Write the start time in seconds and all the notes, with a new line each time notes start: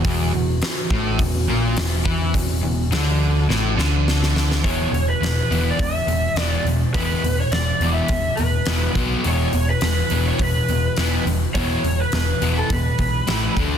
Already playing: E3 F#4
0.04 E1 E2 C#4, kick, open hi-hat
0.34 E1 E2
0.62 muted distorted electric guitar stroke, muted picked electric bass stroke, muted overdriven electric guitar stroke, snare, open hi-hat
0.90 A1 A2, kick
1.19 E1 E2, kick, open hi-hat
1.48 A#1 A#2
1.77 E1 E2, snare, open hi-hat
2.05 E2 E3, kick
2.34 E1 E2, kick, open hi-hat
2.63 E1 E2
2.91 D2 D3, snare, open hi-hat
3.48 A1 A2, snare
3.77 D2 D3, snare
4.08 snare
4.23 snare
4.36 snare
4.51 snare
4.63 E1 E2 B2 E3 C#5, kick, open hi-hat
4.93 E1 E2 B2, open hi-hat
5.09 B4
5.21 E1 E2 B2, snare, open hi-hat
5.50 E1 E2 B2 E3, open hi-hat
5.70 D5
5.79 E1 E2 B2, kick, open hi-hat
5.84 E5
6.07 E1 E2 B2, open hi-hat
6.35 E1 E2 B2 E3, snare, open hi-hat
6.41 D5
6.64 E1 E2 B2, open hi-hat
6.94 E1 E2 B2 E3 B4, kick, open hi-hat
7.23 E1 E2 B2, open hi-hat
7.40 C#5
7.51 E1 E2 B2 D5, snare, open hi-hat
7.80 E1 E2 B2 E3, open hi-hat
7.93 E5
8.08 E1 E2 B2, kick, open hi-hat
8.35 E1 B4, open hi-hat
8.40 E2 B2
8.66 E1 E2 B2 E3, snare, open hi-hat
8.95 B1 B2 F#3 B3, kick, open hi-hat
9.24 E1 E2 B2 E3, open hi-hat
9.28 C#5
9.53 E1 E2 B2, open hi-hat
9.70 B4
9.81 E1 E2 B2, snare, open hi-hat
10.10 E1 E2 B2 E3, open hi-hat
10.28 C#5
10.39 E1 E2 B2 B4, kick, open hi-hat
10.68 E1 E2 B2, open hi-hat
10.97 E1 E2 B2 E3, snare, open hi-hat
11.26 E1 E2 B2, open hi-hat
11.54 E1 E2 B2 E3 C#5, kick, open hi-hat
11.84 E1 E2 B2, open hi-hat
12.00 B4
12.12 E1 E2 B2 B4, snare, open hi-hat
12.41 E1 E2 B2 E3, open hi-hat
12.58 A4
12.70 E1 E2 B2 B4, kick, open hi-hat
12.99 B1 E2 B2, kick, open hi-hat
13.27 A1 A2 E3 A3, snare, open hi-hat
13.56 D2 D3 A3 D4, kick, open hi-hat